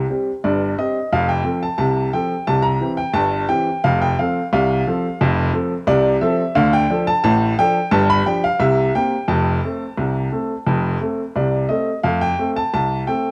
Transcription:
0.10 G3 C4 G4
0.44 G1 G2 D5
0.79 G3 C4 G4 D#5
1.12 F1 F2 F5
1.29 G5
1.45 F3 C4 A4
1.63 A5
1.78 C2 C3 A5
2.13 F3 C4 A4 G5
2.47 C2 C3 A5
2.62 A#5
2.81 E3 C4 G4
2.97 G5
3.13 G1 G2 A5
3.49 E3 C4 G4 G5
3.84 F1 F2 F5
4.02 G5
4.19 F3 C4 A4 F5
4.53 C2 C3 F5
4.87 F3 C4 A4
5.21 F1 F2
5.53 F3 C4 A4
5.87 C2 C3 D5
6.21 F3 C4 A4 E5
6.55 D2 D3 F5
6.73 G5
6.90 F3 D4 A4
7.07 A5
7.24 A1 A2 A5
7.59 F3 D4 A4 G5
7.91 G1 G2 A5
8.10 B5
8.26 F3 D4 G4 G5
8.44 F5
8.59 C2 C3 E5
8.95 A#3 C4 G4 G5
9.28 F1 F2 A5
9.64 A3 C4 A4
9.97 C2 C3
10.32 A3 C4 A4
10.67 F1 F2
11.01 A3 C4 A4
11.36 C2 C3 D5
11.69 A3 C4 A4 D#5
12.04 F2 A3 F5
12.22 G5
12.39 A3 C4 A4
12.57 A5
12.74 C2 A5
13.07 A3 C4 A4 G5

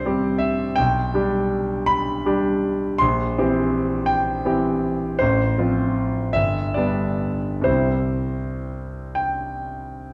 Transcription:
Already playing: C2 G3 C4 G4 C5 D5 E5
0.06 G3 C4 G4
0.38 E5
0.76 B1 G5
1.14 G3 D4 G4
1.86 B5
2.26 G3 D4 G4
2.98 A#1 C6
3.38 E3 C4 G4
4.06 G5
4.45 E3 C4 G4
5.19 A1 C5
5.58 F3 C4 F4
6.33 G1 E5
6.74 G3 B3 D4 D5
7.61 C2 G3 C4 E4 C5
9.15 G5

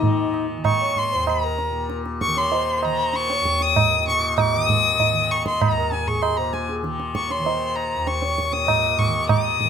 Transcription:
Already playing: D#2 A#2 D#4 D#5
0.00 D#3, tabla tin, tabla ge
0.34 tabla na
0.57 D#3
0.65 C#6, tabla na, tabla ge
0.81 C#5
0.96 C6, tabla ge
1.12 D#2 C5
1.27 A#5, tabla na
1.43 A#4
1.58 tabla te
1.71 A#2
1.90 tabla te
2.06 tabla te
2.21 C#6, tabla ke
2.27 D#3
2.37 C#5 C6, tabla te
2.52 C5, tabla tin
2.77 C6
2.83 D#3 A#5, tabla na
3.13 C#6, tabla te
3.30 C#5, tabla te
3.41 D#2
3.45 tabla ke
3.61 D#6, tabla te
3.76 D#5, tabla na, tabla ge
3.99 A#2
4.08 C#6, tabla te
4.38 C#6, tabla na, tabla ge
4.52 D#3 D#5
4.66 D#6, tabla ge
5.00 tabla tin, tabla ge
5.13 D#3
5.31 C#6, tabla na
5.46 C6, tabla ke
5.62 A#5, tabla na, tabla ge
5.69 D#2
5.77 A#4
5.92 G#5, tabla te
6.01 A#4
6.07 G#4 C#6, tabla ge
6.22 C6, tabla na
6.26 A#2
6.37 C5 A#5
6.53 G#5, tabla ke
6.69 G#4, tabla te
6.82 D#3, tabla te
7.00 tabla te
7.15 C#6, tabla ke
7.30 C#5 C6, tabla te
7.39 D#3
7.44 C5, tabla tin
7.76 A#5, tabla na
7.96 D#2
8.07 C#6, tabla te
8.22 C#5, tabla te
8.38 tabla ke
8.51 A#2 D#6, tabla te
8.67 D#5, tabla na, tabla ge
8.99 C#6, tabla ge
9.07 D#3
9.29 D#6, tabla na, tabla ge
9.45 D#5
9.60 D#3, tabla ge

